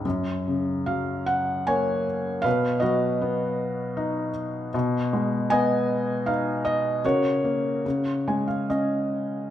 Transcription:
0, 0, Header, 1, 2, 480
1, 0, Start_track
1, 0, Key_signature, 6, "major"
1, 0, Tempo, 818554
1, 27, Time_signature, 3, 2, 24, 8
1, 986, Tempo, 765306
1, 4346, Tempo, 810811
1, 4826, Tempo, 851064
1, 5759, End_track
2, 0, Start_track
2, 0, Title_t, "Felt piano"
2, 0, Program_c, 0, 0
2, 0, Control_c, 0, 64, 127
2, 31, Note_on_c, 0, 42, 48
2, 35, Control_c, 0, 64, 0
2, 127, Control_c, 0, 64, 127
2, 280, Note_on_c, 0, 49, 39
2, 506, Note_on_c, 0, 77, 64
2, 511, Note_on_c, 0, 54, 39
2, 730, Note_off_c, 0, 77, 0
2, 741, Note_on_c, 0, 78, 70
2, 978, Note_on_c, 0, 80, 75
2, 983, Note_on_c, 0, 58, 49
2, 985, Note_on_c, 0, 73, 54
2, 988, Note_off_c, 0, 78, 0
2, 1209, Note_off_c, 0, 49, 0
2, 1444, Note_off_c, 0, 54, 0
2, 1446, Note_off_c, 0, 73, 0
2, 1448, Note_off_c, 0, 42, 0
2, 1448, Note_on_c, 0, 77, 81
2, 1455, Note_off_c, 0, 58, 0
2, 1461, Note_on_c, 0, 71, 61
2, 1466, Note_on_c, 0, 47, 54
2, 1479, Control_c, 0, 64, 0
2, 1482, Note_off_c, 0, 80, 0
2, 1578, Control_c, 0, 64, 127
2, 1680, Note_off_c, 0, 77, 0
2, 1686, Note_on_c, 0, 75, 71
2, 1689, Note_off_c, 0, 71, 0
2, 1697, Note_on_c, 0, 66, 50
2, 1698, Note_on_c, 0, 71, 45
2, 1706, Note_on_c, 0, 54, 42
2, 1948, Note_on_c, 0, 59, 49
2, 2420, Note_on_c, 0, 63, 53
2, 2625, Note_off_c, 0, 75, 0
2, 2630, Note_off_c, 0, 66, 0
2, 2631, Note_off_c, 0, 71, 0
2, 2635, Note_off_c, 0, 54, 0
2, 2876, Note_off_c, 0, 47, 0
2, 2880, Note_off_c, 0, 59, 0
2, 2889, Note_off_c, 0, 63, 0
2, 2905, Note_on_c, 0, 47, 65
2, 2913, Control_c, 0, 64, 0
2, 3038, Control_c, 0, 64, 127
2, 3150, Note_on_c, 0, 56, 48
2, 3382, Note_on_c, 0, 80, 85
2, 3389, Note_on_c, 0, 59, 49
2, 3392, Note_on_c, 0, 75, 60
2, 3859, Note_on_c, 0, 77, 73
2, 3862, Note_on_c, 0, 63, 46
2, 3872, Note_off_c, 0, 80, 0
2, 4076, Note_off_c, 0, 56, 0
2, 4078, Note_off_c, 0, 75, 0
2, 4083, Note_off_c, 0, 77, 0
2, 4101, Note_on_c, 0, 75, 72
2, 4321, Note_off_c, 0, 47, 0
2, 4323, Note_off_c, 0, 59, 0
2, 4329, Note_off_c, 0, 75, 0
2, 4333, Note_off_c, 0, 63, 0
2, 4348, Note_on_c, 0, 49, 53
2, 4352, Note_on_c, 0, 70, 46
2, 4353, Control_c, 0, 64, 0
2, 4354, Note_on_c, 0, 66, 50
2, 4356, Note_on_c, 0, 73, 70
2, 4443, Control_c, 0, 64, 127
2, 4587, Note_on_c, 0, 58, 44
2, 4813, Note_off_c, 0, 49, 0
2, 4821, Note_off_c, 0, 58, 0
2, 4828, Note_on_c, 0, 49, 48
2, 4834, Control_c, 0, 64, 0
2, 4921, Control_c, 0, 64, 127
2, 5066, Note_on_c, 0, 80, 50
2, 5067, Note_on_c, 0, 56, 38
2, 5177, Note_off_c, 0, 80, 0
2, 5180, Note_on_c, 0, 77, 46
2, 5287, Note_off_c, 0, 70, 0
2, 5288, Note_off_c, 0, 66, 0
2, 5289, Note_off_c, 0, 73, 0
2, 5296, Note_off_c, 0, 77, 0
2, 5304, Note_on_c, 0, 75, 53
2, 5308, Note_on_c, 0, 61, 41
2, 5759, Note_off_c, 0, 49, 0
2, 5759, Note_off_c, 0, 56, 0
2, 5759, Note_off_c, 0, 61, 0
2, 5759, Note_off_c, 0, 75, 0
2, 5759, End_track
0, 0, End_of_file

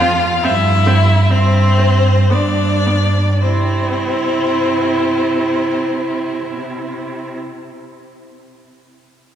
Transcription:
0, 0, Header, 1, 5, 480
1, 0, Start_track
1, 0, Key_signature, 0, "major"
1, 0, Tempo, 869565
1, 244, Time_signature, 3, 2, 24, 8
1, 725, Tempo, 995025
1, 1205, Tempo, 1109057
1, 1685, Tempo, 1047120
1, 4404, End_track
2, 0, Start_track
2, 0, Title_t, "Violin"
2, 0, Program_c, 0, 40
2, 0, Note_on_c, 0, 77, 127
2, 248, Note_on_c, 0, 76, 127
2, 256, Note_off_c, 0, 77, 0
2, 727, Note_off_c, 0, 76, 0
2, 729, Note_on_c, 0, 72, 127
2, 1208, Note_on_c, 0, 74, 127
2, 1215, Note_off_c, 0, 72, 0
2, 1678, Note_off_c, 0, 74, 0
2, 1680, Note_on_c, 0, 72, 113
2, 3479, Note_off_c, 0, 72, 0
2, 4404, End_track
3, 0, Start_track
3, 0, Title_t, "Violin"
3, 0, Program_c, 1, 40
3, 0, Note_on_c, 1, 65, 123
3, 232, Note_off_c, 1, 65, 0
3, 235, Note_on_c, 1, 64, 127
3, 721, Note_on_c, 1, 60, 120
3, 729, Note_off_c, 1, 64, 0
3, 1200, Note_on_c, 1, 62, 100
3, 1207, Note_off_c, 1, 60, 0
3, 1681, Note_off_c, 1, 62, 0
3, 1684, Note_on_c, 1, 60, 106
3, 3481, Note_off_c, 1, 60, 0
3, 4404, End_track
4, 0, Start_track
4, 0, Title_t, "Viola"
4, 0, Program_c, 2, 41
4, 3, Note_on_c, 2, 60, 97
4, 47, Note_off_c, 2, 60, 0
4, 241, Note_on_c, 2, 60, 100
4, 285, Note_off_c, 2, 60, 0
4, 477, Note_on_c, 2, 60, 104
4, 521, Note_off_c, 2, 60, 0
4, 718, Note_on_c, 2, 60, 83
4, 757, Note_off_c, 2, 60, 0
4, 952, Note_on_c, 2, 60, 80
4, 990, Note_off_c, 2, 60, 0
4, 1201, Note_on_c, 2, 59, 88
4, 1236, Note_off_c, 2, 59, 0
4, 1444, Note_on_c, 2, 59, 75
4, 1479, Note_off_c, 2, 59, 0
4, 1684, Note_on_c, 2, 64, 94
4, 3481, Note_off_c, 2, 64, 0
4, 4404, End_track
5, 0, Start_track
5, 0, Title_t, "Cello"
5, 0, Program_c, 3, 42
5, 0, Note_on_c, 3, 41, 115
5, 186, Note_off_c, 3, 41, 0
5, 242, Note_on_c, 3, 43, 127
5, 665, Note_off_c, 3, 43, 0
5, 725, Note_on_c, 3, 43, 116
5, 1145, Note_off_c, 3, 43, 0
5, 1203, Note_on_c, 3, 43, 104
5, 1630, Note_off_c, 3, 43, 0
5, 1685, Note_on_c, 3, 48, 100
5, 3481, Note_off_c, 3, 48, 0
5, 4404, End_track
0, 0, End_of_file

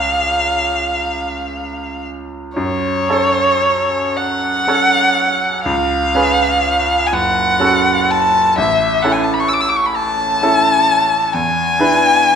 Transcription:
0, 0, Header, 1, 3, 480
1, 0, Start_track
1, 0, Key_signature, 3, "minor"
1, 0, Tempo, 1090909
1, 654, Tempo, 1060071
1, 1136, Time_signature, 6, 3, 24, 8
1, 2094, Tempo, 972447
1, 4014, Tempo, 921659
1, 5992, End_track
2, 0, Start_track
2, 0, Title_t, "Violin"
2, 0, Program_c, 0, 40
2, 0, Note_on_c, 0, 77, 66
2, 902, Note_off_c, 0, 77, 0
2, 1141, Note_on_c, 0, 73, 75
2, 1867, Note_on_c, 0, 78, 78
2, 1873, Note_off_c, 0, 73, 0
2, 2575, Note_off_c, 0, 78, 0
2, 2578, Note_on_c, 0, 77, 77
2, 3278, Note_on_c, 0, 80, 48
2, 3286, Note_off_c, 0, 77, 0
2, 3307, Note_on_c, 0, 78, 76
2, 3314, Note_off_c, 0, 80, 0
2, 3791, Note_on_c, 0, 81, 72
2, 3798, Note_off_c, 0, 78, 0
2, 4022, Note_off_c, 0, 81, 0
2, 4028, Note_on_c, 0, 76, 69
2, 4255, Note_on_c, 0, 78, 66
2, 4263, Note_off_c, 0, 76, 0
2, 4307, Note_on_c, 0, 80, 53
2, 4315, Note_off_c, 0, 78, 0
2, 4368, Note_on_c, 0, 81, 46
2, 4376, Note_off_c, 0, 80, 0
2, 4420, Note_on_c, 0, 83, 51
2, 4427, Note_off_c, 0, 81, 0
2, 4452, Note_on_c, 0, 85, 52
2, 4460, Note_off_c, 0, 83, 0
2, 4497, Note_on_c, 0, 88, 51
2, 4505, Note_off_c, 0, 85, 0
2, 4524, Note_on_c, 0, 86, 56
2, 4532, Note_off_c, 0, 88, 0
2, 4561, Note_on_c, 0, 88, 62
2, 4569, Note_off_c, 0, 86, 0
2, 4603, Note_on_c, 0, 86, 51
2, 4610, Note_off_c, 0, 88, 0
2, 4643, Note_on_c, 0, 85, 52
2, 4651, Note_off_c, 0, 86, 0
2, 4691, Note_on_c, 0, 83, 48
2, 4699, Note_off_c, 0, 85, 0
2, 4739, Note_on_c, 0, 81, 82
2, 4747, Note_off_c, 0, 83, 0
2, 5457, Note_on_c, 0, 80, 81
2, 5465, Note_off_c, 0, 81, 0
2, 5992, Note_off_c, 0, 80, 0
2, 5992, End_track
3, 0, Start_track
3, 0, Title_t, "Grand piano"
3, 0, Program_c, 1, 0
3, 0, Control_c, 1, 64, 127
3, 0, Note_on_c, 1, 37, 36
3, 0, Note_on_c, 1, 61, 26
3, 0, Note_on_c, 1, 68, 26
3, 0, Note_on_c, 1, 73, 27
3, 1109, Note_off_c, 1, 37, 0
3, 1111, Note_off_c, 1, 61, 0
3, 1115, Note_off_c, 1, 68, 0
3, 1118, Note_off_c, 1, 73, 0
3, 1142, Note_on_c, 1, 42, 45
3, 1145, Control_c, 1, 64, 0
3, 1229, Control_c, 1, 64, 127
3, 1366, Note_off_c, 1, 42, 0
3, 1380, Note_on_c, 1, 61, 35
3, 1383, Note_on_c, 1, 69, 40
3, 1387, Note_on_c, 1, 73, 42
3, 2083, Note_off_c, 1, 61, 0
3, 2085, Note_off_c, 1, 69, 0
3, 2087, Note_off_c, 1, 73, 0
3, 2098, Note_on_c, 1, 61, 37
3, 2100, Note_on_c, 1, 69, 34
3, 2103, Note_on_c, 1, 73, 39
3, 2556, Note_off_c, 1, 61, 0
3, 2557, Note_off_c, 1, 69, 0
3, 2558, Note_off_c, 1, 73, 0
3, 2582, Note_on_c, 1, 37, 44
3, 2583, Control_c, 1, 64, 0
3, 2657, Control_c, 1, 64, 127
3, 2814, Note_off_c, 1, 37, 0
3, 2825, Note_on_c, 1, 61, 38
3, 2831, Note_on_c, 1, 71, 41
3, 2832, Note_on_c, 1, 68, 36
3, 3282, Note_off_c, 1, 61, 0
3, 3286, Note_off_c, 1, 68, 0
3, 3286, Note_off_c, 1, 71, 0
3, 3306, Control_c, 1, 64, 0
3, 3307, Note_on_c, 1, 30, 44
3, 3384, Control_c, 1, 64, 127
3, 3535, Note_off_c, 1, 30, 0
3, 3540, Note_on_c, 1, 66, 37
3, 3541, Note_on_c, 1, 61, 38
3, 3546, Note_on_c, 1, 69, 39
3, 3996, Note_off_c, 1, 61, 0
3, 3996, Note_off_c, 1, 66, 0
3, 3999, Note_off_c, 1, 69, 0
3, 4023, Control_c, 1, 64, 0
3, 4025, Note_on_c, 1, 33, 43
3, 4122, Control_c, 1, 64, 127
3, 4260, Note_off_c, 1, 33, 0
3, 4267, Note_on_c, 1, 69, 39
3, 4269, Note_on_c, 1, 61, 39
3, 4271, Note_on_c, 1, 64, 38
3, 4966, Note_off_c, 1, 69, 0
3, 4967, Note_off_c, 1, 61, 0
3, 4968, Note_off_c, 1, 64, 0
3, 4987, Note_on_c, 1, 61, 35
3, 4988, Note_on_c, 1, 64, 37
3, 4991, Note_on_c, 1, 69, 38
3, 5442, Note_off_c, 1, 61, 0
3, 5443, Note_off_c, 1, 64, 0
3, 5444, Note_off_c, 1, 69, 0
3, 5465, Note_on_c, 1, 40, 40
3, 5469, Control_c, 1, 64, 0
3, 5563, Control_c, 1, 64, 127
3, 5693, Note_off_c, 1, 40, 0
3, 5700, Note_on_c, 1, 62, 36
3, 5703, Note_on_c, 1, 64, 34
3, 5706, Note_on_c, 1, 71, 45
3, 5992, Note_off_c, 1, 62, 0
3, 5992, Note_off_c, 1, 64, 0
3, 5992, Note_off_c, 1, 71, 0
3, 5992, End_track
0, 0, End_of_file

